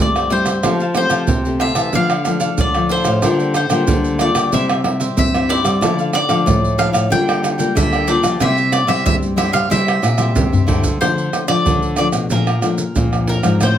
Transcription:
Already playing: C4 E4 G4 C5 E5
0.00 G2 A3 D5
0.15 G4 C5 E5, pandeiro, tamborim, maracas
0.30 G3 C4 E4 G4 C5 E5, pandeiro
0.46 G4 C5 E5, pandeiro, tamborim, maracas
0.63 F3 A3 C4 G4 C5 F5 A5, pandeiro, tamborim, maracas, surdo
0.80 C5 F5 A5, pandeiro, maracas
0.95 A3 C4 G4 C5, muted cavaquinho stroke, pandeiro, tamborim, maracas
1.10 F3 C5 F5 A5, pandeiro, tamborim, maracas
1.27 C3, pandeiro, maracas, surdo
1.45 A3 C4 G4, pandeiro, maracas
1.59 G4 C5 E5 F5 A5, pandeiro, tamborim
1.75 E3 C5 F5 A5, pandeiro, tamborim, maracas
1.93 D3 F3 A3 D4 A4 D5 F5, pandeiro, maracas, surdo
2.10 A4 D5 F5, pandeiro, tamborim, maracas
2.25 F3 A3 D4, muted cavaquinho stroke, pandeiro, tamborim, maracas
2.40 A4 D5 F5, pandeiro, maracas
2.58 A2 D3 D5, pandeiro, maracas, surdo
2.74 F3 A3 D4 A4 D5 F5, pandeiro, tamborim, maracas
2.89 D4 A4 C5 D5 F5, pandeiro
3.05 A2 A4 D5 F5, pandeiro, tamborim, maracas
3.22 D3 G3 A#3 F4 A#4 D5 G5, pandeiro, tamborim, maracas, surdo
3.39 A#4 D5 G5, pandeiro, maracas
3.54 C5, muted cavaquinho stroke, pandeiro, tamborim, maracas
3.70 D3 G3 A#3 F4 A#4 D5 G5, pandeiro, tamborim, maracas
3.87 D3, pandeiro, maracas, surdo
4.04 pandeiro, maracas
4.19 G3 A#3 F4 A#4 D5 G5, pandeiro, tamborim, maracas
4.35 D3 A#4 D5 G5, pandeiro, tamborim, maracas
4.52 C3 G3 C4 E4 G4 C5 E5, pandeiro, maracas, surdo
4.69 G4 C5 E5, pandeiro, tamborim, maracas
4.84 G3 C4 E4, muted cavaquinho stroke, pandeiro, tamborim
5.00 G4 C5 E5, pandeiro, maracas
5.17 G2 C4 E5, pandeiro, maracas, surdo
5.34 G3 C4 E4 G4 C5 E5, pandeiro, tamborim, maracas
5.49 E4 G4 C5 D5 E5, pandeiro
5.64 G3 G4 C5 E5, pandeiro, tamborim, maracas
5.81 D3 F3 A3 E4 A4 D5 F5, pandeiro, tamborim, maracas, surdo
5.99 A4 D5 F5, pandeiro, maracas
6.13 D5, muted cavaquinho stroke, pandeiro, tamborim, maracas
6.29 D3 F3 A3 A4 D5 F5, pandeiro, tamborim, maracas
6.46 A2, pandeiro, maracas, surdo
6.64 pandeiro, maracas
6.78 F3 A3 E4 A4 D5 F5, pandeiro, tamborim, maracas
6.93 A2 A4 D5 F5, pandeiro, tamborim, maracas
7.10 D3 G3 A#3 D4 F4 A#4 D5 G5, pandeiro, maracas, surdo
7.28 A#4 D5 G5, pandeiro, tamborim, maracas
7.43 muted cavaquinho stroke, pandeiro, tamborim, maracas
7.58 G3 A#3 F4 A#4 D5 G5, pandeiro, maracas
7.75 D3 E5, pandeiro, maracas, surdo
7.93 A#4 D5 G5, pandeiro, tamborim, maracas
8.07 G3 A#3 D4 F4 A#4 D5 G5, pandeiro, maracas
8.23 F3 A#4 D5 G5, pandeiro, tamborim, maracas
8.40 C3 G3 C4 E4 G4 C5 E5, pandeiro, tamborim, maracas, surdo
8.57 G4 C5 E5, pandeiro, maracas
8.72 D5, muted cavaquinho stroke, pandeiro, tamborim, maracas
8.87 C3 G3 C4 E4 G4 C5 E5, pandeiro, tamborim, maracas
9.05 G2 G3 E5, pandeiro, maracas, surdo
9.22 pandeiro, maracas
9.36 G3 C4 E4 G4 C5 E5, pandeiro, tamborim, maracas
9.52 G3 G4 C5 E5 F5, pandeiro, tamborim, maracas
9.70 C3 G3 C4 E4 G4 C5 E5, pandeiro, maracas, surdo
9.87 G4 C5 E5, pandeiro, tamborim, maracas
10.02 A#2, muted cavaquinho stroke, pandeiro, tamborim, maracas
10.17 G3 C4 E4 G4 C5 E5, pandeiro, tamborim, maracas
10.35 G2 C3, pandeiro, maracas, surdo
10.52 G4 C5 E5, surdo, pandeiro, maracas
10.67 D3 G3 C4 E4 G4 C5 E5, pandeiro, surdo
10.83 G4 C5 E5, pandeiro, maracas, surdo
11.01 D3 F3 A3 D4 C5, pandeiro, tamborim, maracas, surdo
11.18 pandeiro, maracas
11.33 pandeiro, tamborim, maracas
11.48 D3 F3 A3 D4 D5, pandeiro, tamborim, maracas
11.66 A2 D3, pandeiro, maracas, surdo
11.82 pandeiro, maracas
11.96 F3 A3 D4 D5, pandeiro, tamborim, maracas
12.12 B2, pandeiro, tamborim, maracas
12.30 A#2 F3 A3 D4 A#4, pandeiro, maracas, surdo
12.47 pandeiro, tamborim, maracas
12.62 F3 A3 D4, pandeiro, tamborim, maracas
12.78 pandeiro, maracas
12.96 F2 A#2 F3 D4, pandeiro, maracas, surdo
13.13 pandeiro, tamborim, maracas
13.27 A#4, pandeiro
13.43 G#2 F3 C4 D4, pandeiro, tamborim, maracas
13.61 A2 C5, pandeiro, tamborim, maracas, surdo

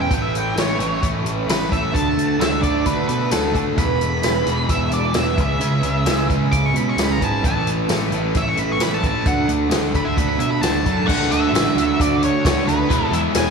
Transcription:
Already playing: E3 G#3 C#4 E4
0.01 G5
0.10 A1 A2 E3 A3 C#4, kick, closed hi-hat
0.14 E4 G5
0.22 E5
0.34 E3 A3 C#4 E4 G5, closed hi-hat
0.56 A1 A2 E3 A3 C#4 E4 C#5, snare, closed hi-hat, tambourine
0.78 A1 A2 E3 A3, closed hi-hat
0.83 C#4 E4
0.91 A3 C#4 E4
1.02 A1 A2 E3 A3, kick, closed hi-hat
1.14 A3 C#4 E4
1.24 A1 E3 A3 C#4 E4, closed hi-hat
1.37 A3 C#4 E4
1.47 A1 A2 E3 A3 C#4 E4 B4, snare, closed hi-hat, tambourine
1.70 A1 A2 E3 A3 C#4 E4 E5, kick, closed hi-hat
1.93 D2 D3 A3 D4 F#4 A5, kick, closed hi-hat
2.16 D2 D3 A3 D4 F#4, closed hi-hat
2.39 D2 D3 A3 D4 F#4 E5, snare, closed hi-hat, tambourine
2.61 D2 D3 A3 D4 F#4 D5, kick, closed hi-hat
2.73 A3 D4 F#4
2.85 D2 D3 A3 D4 B4, kick, closed hi-hat
2.96 A3 D4 F#4
3.06 B2 D3 A3 D4 F#4 B4, closed hi-hat
3.19 A3 D4 F#4
3.29 D2 D3 A3 D4 F#4 A4, snare, closed hi-hat, tambourine
3.52 D2 D3 A3 D4, kick, closed hi-hat
3.56 F#4
3.77 E1 E2 B2 E3 G#3 B3 G#4 B5, kick, closed hi-hat
4.01 E3 G#3 B3 G#4, closed hi-hat
4.23 E1 E2 B2 E3 G#3 B3 G#4, snare, closed hi-hat, tambourine
4.46 E1 E2 B2 E3 G#3, closed hi-hat
4.50 B3 G#4
4.58 E3 G#3 B3 G#4
4.69 E1 E2 B2 E3 E5, kick, closed hi-hat
4.80 E3 G#3 B3 G#4
4.91 E1 E3 G#3 B3 D5, closed hi-hat
4.96 G#4
5.03 E3 G#3 B3 G#4
5.14 E1 E2 B2 E3 G#3 B3 G#4 E5, snare, closed hi-hat, tambourine
5.37 C#2 C#3 E3 G#3, kick, closed hi-hat
5.41 C#4 E4 E5
5.61 C#2 C#3 E3 G#3 C#4 E4, closed hi-hat
5.83 C#2 E3 G#3 C#4, closed hi-hat
5.88 E4
6.06 C#2 C#3 E3 G#3 C#4 E4, snare, closed hi-hat, tambourine
6.29 C#2 C#3 E3 G#3 C#4 E4, kick, closed hi-hat
6.41 G#3 C#4 E4
6.52 C#2 C#3 G#3 C#4 D6, kick, closed hi-hat
6.63 G#3 C#4 E4 C#6
6.73 B2 E3 G#3 B5, closed hi-hat
6.77 C#4 E4
6.85 G#3 C#4 E4
6.89 C#6
6.96 C#2 C#3 E3 G#3 C#4 E4, snare, closed hi-hat, tambourine
7.00 B5
7.12 A#5
7.20 G#1 C#3 E3 G#3 C#4 E4 A5, kick, closed hi-hat
7.44 A1 A2 E3 A3 C#4 E4 A5, kick, closed hi-hat
7.66 E3 A3 C#4 E4, closed hi-hat
7.89 A1 A2 E3 A3 C#4 E4, snare, closed hi-hat, tambourine
8.11 A1 A2 E3 A3 C#4 E4, closed hi-hat
8.22 A3 C#4 E4
8.35 A1 A2 E3 A3 E5, kick, closed hi-hat
8.47 A3 C#4 E4 C#6
8.57 A1 E3 A3 C#4 E4 B5, closed hi-hat
8.69 A3 C#4 E4 C#6
8.79 A1 A2 E3 A3 C#4 E4 B5, snare, closed hi-hat, tambourine
8.94 A5
9.02 A1 A2 E3 A3 C#4 E4, kick, closed hi-hat
9.07 A5
9.24 D2 D3 A3 D4 F#4 F#5, kick, closed hi-hat
9.47 D2 D3 A3 D4 F#4, closed hi-hat
9.69 D2 D3 A3 D4 F#4, snare, closed hi-hat, tambourine
9.94 D2 D3 A3 D4 F#4 B5, kick, closed hi-hat
10.05 A3 D4 F#4 E5
10.17 D2 D3 A3 D4 B5, kick, closed hi-hat
10.29 A3 D4 F#4 B5
10.38 B2 D3 A3 E5, closed hi-hat
10.43 D4 F#4
10.51 D4 F#4 B5
10.55 A3
10.61 D2 D3 A3 D4 A5, snare, closed hi-hat, tambourine
10.65 F#4
10.84 F#2 D3 A3 D4 F#4, kick, closed hi-hat
11.07 D2 D3 A3 D4 F#4 F#5, kick, crash
11.22 snare
11.29 D2 F#4 E5, closed hi-hat
11.33 A3 D4
11.52 A1 D3 A3 D4 F#4, closed hi-hat, tambourine
11.56 snare
11.76 D2 A3 D4 F#4, closed hi-hat
12.00 D2 D5, kick, closed hi-hat
12.23 C#5, closed hi-hat
12.45 D2 D3 A3 D4 F#4 C#5, kick, snare, closed hi-hat, tambourine
12.66 D2 A3 D4 F#4 B4, closed hi-hat
12.89 E1 E3 G#3 B3 E4, kick, closed hi-hat
13.11 E2 G#3 B3 E4 E5, closed hi-hat
13.33 E1 E3 G#3 B3 E4, snare, closed hi-hat, tambourine
13.37 G#5

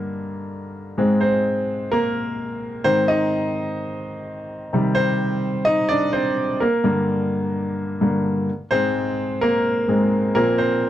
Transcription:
Already playing: G2 D3 A#3 A#4
0.98 G#2 G#3 C4
1.21 C4 C5
1.92 A#3 A#4
2.84 G#2 D#3 C4 C5
3.08 D#4 D#5
4.73 C3 D#3 G3
4.95 C4 C5
5.65 D#4 D#5
5.89 D4 D5
6.13 C4 C5
6.60 A#3 A#4
6.84 G2 D3 A#3
8.01 G2 D3 A#3
8.71 G#2 G#3 C4 C5
9.41 A#3 A#4
9.88 G#2 G#3 C4
10.35 A#2 F3 A#3 C4 A#4
10.58 C4 C5

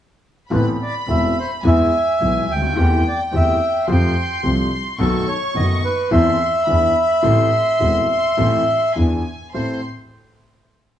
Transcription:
0.51 A1 A2 E3 B3 C4 A4 B4 B5
0.82 D5
1.08 E1 E2 E3 B3 C4 A4 E5
1.39 C5
1.63 E2 E3 G#3 B3 G#4 E5 G#5
2.21 B1 B2 E3 G#3 B3 G#4
2.48 D2 G5
2.56 C#2
2.62 D2
2.69 D#2
2.76 E2 E3 A3 C4 G4 G5
3.08 D5
3.32 E2 E3 A3 C4 G4 E5
3.87 F2 F3 A3 C4 G4 C6
3.91 G5
4.43 C2 C3 F3 A3 C4 G4
4.99 B1 B2 D#3 A3 B3 F#4 A4 C#6
5.28 C#5
5.55 F#1 F#2 D#3 A3 B3 F#4 D#5
5.84 B4
6.11 E2 E3 A3 C4 A4 E5 C6
6.67 E2 E3 B3 D4 G#4 B5
7.23 A1 A2 E3 A3 C4 A4 C6
7.80 E1 E2 E3 A3 C4 A4
8.37 A1 A2 E3 A3 C4 A4
8.96 E2 E3 B3 D4 G#4 G#5
9.54 A1 C4 E4 A4 C5 C6

